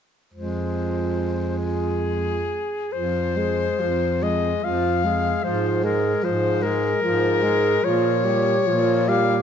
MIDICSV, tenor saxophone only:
0, 0, Header, 1, 2, 480
1, 0, Start_track
1, 0, Key_signature, -4, "minor"
1, 0, Tempo, 843882
1, 193, Time_signature, 3, 2, 24, 8
1, 1151, Tempo, 916031
1, 1631, Tempo, 847458
1, 2591, Tempo, 797872
1, 4031, Tempo, 827586
1, 5418, End_track
2, 0, Start_track
2, 0, Title_t, "Tenor saxophone"
2, 0, Program_c, 0, 66
2, 193, Note_on_c, 0, 56, 27
2, 1432, Note_off_c, 0, 56, 0
2, 1631, Note_on_c, 0, 53, 34
2, 1874, Note_on_c, 0, 56, 30
2, 1882, Note_off_c, 0, 53, 0
2, 2115, Note_on_c, 0, 53, 30
2, 2123, Note_off_c, 0, 56, 0
2, 2358, Note_on_c, 0, 56, 27
2, 2366, Note_off_c, 0, 53, 0
2, 2591, Note_off_c, 0, 56, 0
2, 2595, Note_on_c, 0, 53, 33
2, 2838, Note_on_c, 0, 56, 30
2, 2847, Note_off_c, 0, 53, 0
2, 3070, Note_off_c, 0, 56, 0
2, 3073, Note_on_c, 0, 53, 34
2, 3311, Note_on_c, 0, 56, 34
2, 3320, Note_off_c, 0, 53, 0
2, 3552, Note_on_c, 0, 53, 35
2, 3561, Note_off_c, 0, 56, 0
2, 3791, Note_on_c, 0, 56, 39
2, 3800, Note_off_c, 0, 53, 0
2, 4025, Note_off_c, 0, 56, 0
2, 4029, Note_on_c, 0, 53, 38
2, 4265, Note_on_c, 0, 56, 36
2, 4274, Note_off_c, 0, 53, 0
2, 4494, Note_off_c, 0, 56, 0
2, 4497, Note_on_c, 0, 53, 40
2, 4741, Note_on_c, 0, 55, 38
2, 4749, Note_off_c, 0, 53, 0
2, 4980, Note_on_c, 0, 53, 38
2, 4988, Note_off_c, 0, 55, 0
2, 5223, Note_on_c, 0, 55, 43
2, 5232, Note_off_c, 0, 53, 0
2, 5396, Note_off_c, 0, 55, 0
2, 5418, End_track
0, 0, End_of_file